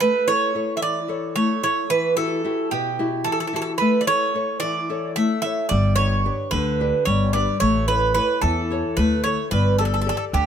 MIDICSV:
0, 0, Header, 1, 4, 480
1, 0, Start_track
1, 0, Tempo, 542986
1, 15, Time_signature, 7, 3, 24, 8
1, 9247, End_track
2, 0, Start_track
2, 0, Title_t, "Bouzouki"
2, 0, Program_c, 0, 25
2, 4, Note_on_c, 0, 71, 89
2, 245, Note_on_c, 0, 73, 97
2, 256, Note_off_c, 0, 71, 0
2, 677, Note_off_c, 0, 73, 0
2, 680, Note_on_c, 0, 76, 62
2, 725, Note_off_c, 0, 76, 0
2, 729, Note_on_c, 0, 74, 82
2, 1177, Note_off_c, 0, 74, 0
2, 1198, Note_on_c, 0, 73, 86
2, 1435, Note_off_c, 0, 73, 0
2, 1445, Note_on_c, 0, 73, 83
2, 1671, Note_off_c, 0, 73, 0
2, 1680, Note_on_c, 0, 71, 92
2, 1912, Note_off_c, 0, 71, 0
2, 1915, Note_on_c, 0, 69, 95
2, 2369, Note_off_c, 0, 69, 0
2, 2398, Note_on_c, 0, 67, 82
2, 2850, Note_off_c, 0, 67, 0
2, 2868, Note_on_c, 0, 69, 84
2, 2927, Note_off_c, 0, 69, 0
2, 2937, Note_on_c, 0, 69, 64
2, 2997, Note_off_c, 0, 69, 0
2, 3008, Note_on_c, 0, 69, 66
2, 3060, Note_off_c, 0, 69, 0
2, 3071, Note_on_c, 0, 69, 57
2, 3137, Note_off_c, 0, 69, 0
2, 3147, Note_on_c, 0, 69, 70
2, 3187, Note_off_c, 0, 69, 0
2, 3197, Note_on_c, 0, 69, 61
2, 3279, Note_off_c, 0, 69, 0
2, 3340, Note_on_c, 0, 71, 88
2, 3539, Note_off_c, 0, 71, 0
2, 3543, Note_on_c, 0, 74, 68
2, 3598, Note_off_c, 0, 74, 0
2, 3601, Note_on_c, 0, 73, 95
2, 4051, Note_off_c, 0, 73, 0
2, 4065, Note_on_c, 0, 74, 90
2, 4522, Note_off_c, 0, 74, 0
2, 4560, Note_on_c, 0, 76, 89
2, 4779, Note_off_c, 0, 76, 0
2, 4790, Note_on_c, 0, 76, 90
2, 5026, Note_off_c, 0, 76, 0
2, 5029, Note_on_c, 0, 74, 92
2, 5261, Note_off_c, 0, 74, 0
2, 5265, Note_on_c, 0, 73, 95
2, 5751, Note_off_c, 0, 73, 0
2, 5754, Note_on_c, 0, 71, 83
2, 6232, Note_off_c, 0, 71, 0
2, 6236, Note_on_c, 0, 73, 87
2, 6465, Note_off_c, 0, 73, 0
2, 6481, Note_on_c, 0, 74, 87
2, 6715, Note_off_c, 0, 74, 0
2, 6719, Note_on_c, 0, 73, 94
2, 6962, Note_off_c, 0, 73, 0
2, 6965, Note_on_c, 0, 71, 83
2, 7191, Note_off_c, 0, 71, 0
2, 7200, Note_on_c, 0, 71, 87
2, 7428, Note_off_c, 0, 71, 0
2, 7439, Note_on_c, 0, 69, 83
2, 7926, Note_on_c, 0, 71, 83
2, 7940, Note_off_c, 0, 69, 0
2, 8152, Note_off_c, 0, 71, 0
2, 8165, Note_on_c, 0, 73, 85
2, 8391, Note_off_c, 0, 73, 0
2, 8407, Note_on_c, 0, 71, 82
2, 8633, Note_off_c, 0, 71, 0
2, 8650, Note_on_c, 0, 69, 86
2, 8698, Note_off_c, 0, 69, 0
2, 8709, Note_on_c, 0, 69, 61
2, 8775, Note_off_c, 0, 69, 0
2, 8785, Note_on_c, 0, 69, 72
2, 8843, Note_off_c, 0, 69, 0
2, 8853, Note_on_c, 0, 69, 61
2, 8910, Note_off_c, 0, 69, 0
2, 8921, Note_on_c, 0, 69, 75
2, 8981, Note_off_c, 0, 69, 0
2, 8990, Note_on_c, 0, 69, 62
2, 9050, Note_off_c, 0, 69, 0
2, 9141, Note_on_c, 0, 67, 75
2, 9247, Note_off_c, 0, 67, 0
2, 9247, End_track
3, 0, Start_track
3, 0, Title_t, "Nylon-string guitar"
3, 0, Program_c, 1, 24
3, 17, Note_on_c, 1, 57, 70
3, 244, Note_on_c, 1, 64, 47
3, 247, Note_on_c, 1, 69, 44
3, 251, Note_on_c, 1, 73, 53
3, 475, Note_off_c, 1, 64, 0
3, 478, Note_off_c, 1, 69, 0
3, 481, Note_off_c, 1, 57, 0
3, 483, Note_off_c, 1, 73, 0
3, 484, Note_on_c, 1, 64, 49
3, 491, Note_on_c, 1, 69, 43
3, 493, Note_on_c, 1, 73, 52
3, 722, Note_on_c, 1, 52, 64
3, 872, Note_off_c, 1, 64, 0
3, 874, Note_off_c, 1, 69, 0
3, 877, Note_off_c, 1, 73, 0
3, 957, Note_on_c, 1, 64, 48
3, 962, Note_on_c, 1, 69, 43
3, 967, Note_on_c, 1, 73, 52
3, 1192, Note_off_c, 1, 52, 0
3, 1202, Note_on_c, 1, 57, 66
3, 1347, Note_off_c, 1, 64, 0
3, 1350, Note_off_c, 1, 69, 0
3, 1352, Note_off_c, 1, 73, 0
3, 1442, Note_on_c, 1, 64, 50
3, 1448, Note_on_c, 1, 69, 43
3, 1450, Note_on_c, 1, 73, 52
3, 1638, Note_off_c, 1, 64, 0
3, 1640, Note_off_c, 1, 69, 0
3, 1643, Note_off_c, 1, 73, 0
3, 1672, Note_off_c, 1, 57, 0
3, 1684, Note_on_c, 1, 52, 69
3, 1921, Note_on_c, 1, 66, 48
3, 1923, Note_on_c, 1, 64, 50
3, 1929, Note_on_c, 1, 67, 51
3, 2151, Note_off_c, 1, 64, 0
3, 2153, Note_off_c, 1, 52, 0
3, 2156, Note_off_c, 1, 66, 0
3, 2158, Note_off_c, 1, 67, 0
3, 2161, Note_on_c, 1, 64, 45
3, 2166, Note_on_c, 1, 66, 45
3, 2171, Note_on_c, 1, 67, 52
3, 2402, Note_on_c, 1, 47, 67
3, 2549, Note_off_c, 1, 64, 0
3, 2552, Note_off_c, 1, 66, 0
3, 2553, Note_off_c, 1, 67, 0
3, 2645, Note_on_c, 1, 64, 51
3, 2645, Note_on_c, 1, 66, 46
3, 2650, Note_on_c, 1, 67, 54
3, 2871, Note_off_c, 1, 47, 0
3, 2883, Note_on_c, 1, 52, 67
3, 3030, Note_off_c, 1, 64, 0
3, 3031, Note_off_c, 1, 66, 0
3, 3034, Note_off_c, 1, 67, 0
3, 3122, Note_on_c, 1, 64, 47
3, 3130, Note_on_c, 1, 66, 43
3, 3132, Note_on_c, 1, 67, 49
3, 3317, Note_off_c, 1, 64, 0
3, 3322, Note_off_c, 1, 66, 0
3, 3323, Note_off_c, 1, 67, 0
3, 3352, Note_off_c, 1, 52, 0
3, 3369, Note_on_c, 1, 57, 68
3, 3600, Note_on_c, 1, 64, 50
3, 3604, Note_on_c, 1, 69, 43
3, 3609, Note_on_c, 1, 73, 51
3, 3831, Note_off_c, 1, 64, 0
3, 3835, Note_off_c, 1, 57, 0
3, 3837, Note_off_c, 1, 69, 0
3, 3837, Note_off_c, 1, 73, 0
3, 3842, Note_on_c, 1, 64, 43
3, 3847, Note_on_c, 1, 69, 43
3, 3850, Note_on_c, 1, 73, 53
3, 4090, Note_on_c, 1, 52, 66
3, 4229, Note_off_c, 1, 64, 0
3, 4232, Note_off_c, 1, 69, 0
3, 4232, Note_off_c, 1, 73, 0
3, 4327, Note_on_c, 1, 64, 47
3, 4330, Note_on_c, 1, 69, 45
3, 4333, Note_on_c, 1, 73, 51
3, 4555, Note_off_c, 1, 52, 0
3, 4570, Note_on_c, 1, 57, 63
3, 4712, Note_off_c, 1, 64, 0
3, 4714, Note_off_c, 1, 69, 0
3, 4715, Note_off_c, 1, 73, 0
3, 4805, Note_on_c, 1, 64, 43
3, 4812, Note_on_c, 1, 69, 41
3, 4818, Note_on_c, 1, 73, 53
3, 4998, Note_off_c, 1, 64, 0
3, 5003, Note_off_c, 1, 69, 0
3, 5006, Note_off_c, 1, 73, 0
3, 5035, Note_off_c, 1, 57, 0
3, 5051, Note_on_c, 1, 55, 70
3, 5284, Note_on_c, 1, 62, 47
3, 5288, Note_on_c, 1, 67, 42
3, 5290, Note_on_c, 1, 71, 51
3, 5516, Note_off_c, 1, 55, 0
3, 5516, Note_off_c, 1, 62, 0
3, 5518, Note_off_c, 1, 67, 0
3, 5523, Note_off_c, 1, 71, 0
3, 5527, Note_on_c, 1, 62, 48
3, 5531, Note_on_c, 1, 67, 43
3, 5533, Note_on_c, 1, 71, 49
3, 5773, Note_on_c, 1, 50, 66
3, 5912, Note_off_c, 1, 62, 0
3, 5913, Note_off_c, 1, 67, 0
3, 5916, Note_off_c, 1, 71, 0
3, 6012, Note_on_c, 1, 62, 47
3, 6018, Note_on_c, 1, 67, 41
3, 6021, Note_on_c, 1, 71, 52
3, 6237, Note_off_c, 1, 50, 0
3, 6259, Note_on_c, 1, 55, 64
3, 6396, Note_off_c, 1, 62, 0
3, 6397, Note_off_c, 1, 67, 0
3, 6400, Note_off_c, 1, 71, 0
3, 6491, Note_on_c, 1, 62, 46
3, 6498, Note_on_c, 1, 67, 42
3, 6502, Note_on_c, 1, 71, 50
3, 6682, Note_off_c, 1, 62, 0
3, 6687, Note_off_c, 1, 67, 0
3, 6688, Note_off_c, 1, 71, 0
3, 6720, Note_off_c, 1, 55, 0
3, 6733, Note_on_c, 1, 57, 68
3, 6968, Note_on_c, 1, 64, 49
3, 6974, Note_on_c, 1, 69, 45
3, 6978, Note_on_c, 1, 73, 56
3, 7197, Note_off_c, 1, 57, 0
3, 7204, Note_off_c, 1, 64, 0
3, 7205, Note_off_c, 1, 69, 0
3, 7211, Note_off_c, 1, 73, 0
3, 7214, Note_on_c, 1, 64, 48
3, 7217, Note_on_c, 1, 69, 40
3, 7222, Note_on_c, 1, 73, 51
3, 7457, Note_on_c, 1, 52, 67
3, 7597, Note_off_c, 1, 64, 0
3, 7598, Note_off_c, 1, 69, 0
3, 7601, Note_off_c, 1, 73, 0
3, 7695, Note_on_c, 1, 64, 48
3, 7702, Note_on_c, 1, 69, 45
3, 7704, Note_on_c, 1, 73, 53
3, 7920, Note_off_c, 1, 52, 0
3, 7946, Note_on_c, 1, 57, 62
3, 8077, Note_off_c, 1, 64, 0
3, 8082, Note_off_c, 1, 69, 0
3, 8083, Note_off_c, 1, 73, 0
3, 8179, Note_on_c, 1, 64, 47
3, 8185, Note_on_c, 1, 69, 43
3, 8186, Note_on_c, 1, 73, 50
3, 8368, Note_off_c, 1, 64, 0
3, 8370, Note_off_c, 1, 69, 0
3, 8372, Note_off_c, 1, 73, 0
3, 8405, Note_off_c, 1, 57, 0
3, 8423, Note_on_c, 1, 55, 68
3, 8663, Note_on_c, 1, 67, 48
3, 8668, Note_on_c, 1, 69, 45
3, 8670, Note_on_c, 1, 74, 56
3, 8883, Note_off_c, 1, 55, 0
3, 8885, Note_off_c, 1, 67, 0
3, 8887, Note_off_c, 1, 69, 0
3, 8892, Note_off_c, 1, 74, 0
3, 8896, Note_on_c, 1, 67, 46
3, 8898, Note_on_c, 1, 69, 43
3, 8902, Note_on_c, 1, 74, 50
3, 9136, Note_on_c, 1, 50, 67
3, 9247, Note_off_c, 1, 50, 0
3, 9247, Note_off_c, 1, 67, 0
3, 9247, Note_off_c, 1, 69, 0
3, 9247, Note_off_c, 1, 74, 0
3, 9247, End_track
4, 0, Start_track
4, 0, Title_t, "Upright bass"
4, 0, Program_c, 2, 32
4, 5050, Note_on_c, 2, 31, 96
4, 5553, Note_off_c, 2, 31, 0
4, 5765, Note_on_c, 2, 38, 92
4, 6102, Note_off_c, 2, 38, 0
4, 6250, Note_on_c, 2, 31, 86
4, 6586, Note_off_c, 2, 31, 0
4, 6730, Note_on_c, 2, 33, 93
4, 7234, Note_off_c, 2, 33, 0
4, 7450, Note_on_c, 2, 40, 95
4, 7786, Note_off_c, 2, 40, 0
4, 7931, Note_on_c, 2, 38, 85
4, 8267, Note_off_c, 2, 38, 0
4, 8414, Note_on_c, 2, 31, 95
4, 8918, Note_off_c, 2, 31, 0
4, 9134, Note_on_c, 2, 38, 99
4, 9247, Note_off_c, 2, 38, 0
4, 9247, End_track
0, 0, End_of_file